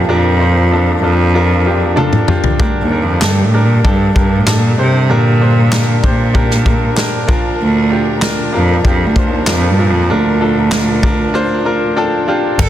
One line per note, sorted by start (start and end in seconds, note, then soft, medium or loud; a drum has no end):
0.00 2.24 A#2 soft
0.00 2.56 A#2 medium
0.00 2.25 F3 soft
0.00 2.56 F3 medium
0.00 0.09 D4 medium
0.00 2.56 D4 soft
0.00 0.09 F4 medium
0.00 1.67 G4 medium
0.00 0.10 A#4 medium
0.00 2.56 A#4 medium
0.00 0.41 C5 medium
0.09 0.99 F2 medium
0.09 0.38 D4 medium
0.09 0.39 F4 medium
0.09 0.39 A#4 medium
0.40 0.70 D4 medium
0.40 0.70 F4 soft
0.40 0.71 C5 medium
0.72 1.01 D4 medium
0.72 1.02 F4 medium
0.72 1.02 A4 medium
1.02 2.25 F2 medium
1.02 1.33 D4 medium
1.02 1.33 F4 medium
1.02 1.33 A4 medium
1.34 1.64 D4 medium
1.34 1.64 F4 medium
1.34 1.65 A#4 medium
1.66 1.95 D4 medium
1.66 1.95 F4 soft
1.66 1.96 G4 medium
1.96 2.26 D4 medium
1.96 2.27 F4 medium
1.96 2.27 A4 medium
1.96 high tom soft
2.13 mid tom soft
2.28 2.58 D4 medium
2.28 2.58 F4 medium
2.28 2.58 G4 medium
2.28 mid tom medium
2.44 floor tom medium
2.59 2.70 D2 medium
2.59 7.24 G2 medium
2.59 5.06 G2 soft
2.59 5.06 D3 soft
2.59 7.24 G3 medium
2.59 12.55 D4 soft
2.59 2.89 D4 medium
2.59 2.89 G4 medium
2.59 12.55 A#4 medium
2.59 2.90 A#4 medium
2.59 kick medium
2.82 3.05 D#2 medium
2.91 3.21 D4 medium
2.91 3.21 G4 soft
2.91 3.21 A#4 medium
3.03 3.25 F2 medium
3.22 3.46 G2 medium
3.22 3.52 D4 medium
3.22 3.52 G4 medium
3.22 3.52 A4 medium
3.22 snare medium
3.22 clap medium
3.45 3.67 A2 medium
3.54 3.83 D4 medium
3.54 3.83 G4 soft
3.54 3.84 A#4 medium
3.66 3.85 A#2 medium
3.84 4.14 G2 medium
3.84 4.13 D4 medium
3.84 4.14 G4 medium
3.84 4.15 A4 medium
3.84 kick medium
4.15 4.39 G2 medium
4.15 4.45 D4 medium
4.15 4.45 G4 soft
4.15 4.46 A#4 medium
4.15 kick medium
4.37 4.60 A2 medium
4.46 4.76 D4 medium
4.46 4.77 G4 medium
4.46 4.77 A4 medium
4.46 snare medium
4.46 clap medium
4.58 4.79 A#2 medium
4.78 5.13 C3 medium
4.78 5.08 D4 medium
4.78 5.08 G4 medium
4.78 5.08 C5 medium
5.09 7.25 G2 soft
5.09 6.04 A#2 medium
5.09 7.25 D3 medium
5.09 5.39 D4 medium
5.09 5.39 G4 medium
5.09 5.40 A#4 medium
5.41 5.70 D4 medium
5.41 5.71 G4 medium
5.41 5.71 C5 medium
5.72 6.02 D4 medium
5.72 6.02 G4 medium
5.72 6.02 A#4 medium
5.72 snare medium
5.72 clap medium
6.03 7.26 A#2 medium
6.03 6.32 D4 medium
6.03 6.33 G4 medium
6.03 6.33 C5 medium
6.03 kick medium
6.34 6.64 D4 medium
6.34 6.64 G4 medium
6.34 6.65 A#4 medium
6.34 kick medium
6.51 snare soft
6.66 6.95 D4 medium
6.66 6.95 G4 soft
6.66 6.96 A#4 medium
6.66 kick medium
6.97 7.26 D4 medium
6.97 7.27 G4 medium
6.97 7.27 A#4 medium
6.97 snare medium
6.97 clap medium
7.28 9.74 A#2 medium
7.28 12.56 A#2 medium
7.28 9.74 F3 medium
7.28 12.56 F3 medium
7.28 7.87 D4 medium
7.28 7.87 F4 medium
7.28 7.87 A#4 medium
7.28 kick medium
7.62 8.19 D2 medium
7.90 8.20 D4 medium
7.90 8.20 F4 medium
7.90 8.21 G4 medium
8.22 8.51 D4 medium
8.22 8.52 F4 medium
8.22 8.52 A#4 medium
8.22 snare loud
8.22 clap medium
8.53 8.84 F2 medium
8.53 8.83 D4 medium
8.53 8.83 F4 medium
8.53 8.83 A#4 medium
8.84 9.08 F2 medium
8.84 9.14 D4 medium
8.84 9.14 F4 medium
8.84 9.14 G4 medium
8.84 kick medium
9.06 9.29 D2 medium
9.16 9.46 D4 medium
9.16 9.46 F4 medium
9.16 9.46 C5 medium
9.16 kick medium
9.28 9.48 D#2 medium
9.47 9.71 F2 medium
9.47 9.77 D4 medium
9.47 9.77 F4 medium
9.47 9.77 A#4 medium
9.47 snare medium
9.47 clap medium
9.70 9.92 G2 medium
9.79 12.25 A#2 medium
9.79 12.25 F3 medium
9.79 10.08 D4 medium
9.79 10.08 F4 medium
9.79 10.08 A#4 medium
9.90 10.13 F2 medium
10.10 11.98 D2 medium
10.10 10.39 D4 medium
10.10 10.39 F4 medium
10.10 10.40 A#4 medium
10.41 10.70 D4 medium
10.41 10.70 F4 medium
10.41 10.71 A4 medium
10.71 11.01 D4 medium
10.71 11.02 F4 medium
10.71 11.02 A#4 medium
10.71 snare medium
10.71 clap medium
11.03 11.32 D4 medium
11.03 11.33 F4 medium
11.03 11.33 A#4 medium
11.03 kick medium
11.34 11.63 D4 medium
11.34 11.64 F4 medium
11.34 11.64 C5 medium
11.65 11.95 D4 medium
11.65 11.95 F4 medium
11.65 11.95 A#4 medium
11.65 11.95 A#5 medium
11.96 12.26 D4 medium
11.96 12.26 F4 medium
11.96 12.27 A4 medium
11.96 12.26 G5 medium
12.28 12.57 D4 medium
12.28 12.58 F4 medium
12.28 12.58 G4 medium
12.28 12.57 F5 medium
12.59 12.69 G1 loud
12.59 12.69 G2 medium
12.59 12.69 D3 medium
12.59 12.69 G3 medium
12.59 12.69 A#3 medium
12.59 12.69 D4 medium
12.59 12.69 G4 medium
12.59 12.69 A4 medium
12.59 12.69 A#4 medium
12.59 12.69 D5 medium
12.59 12.69 G5 medium
12.59 12.69 D6 medium
12.59 kick loud
12.59 crash medium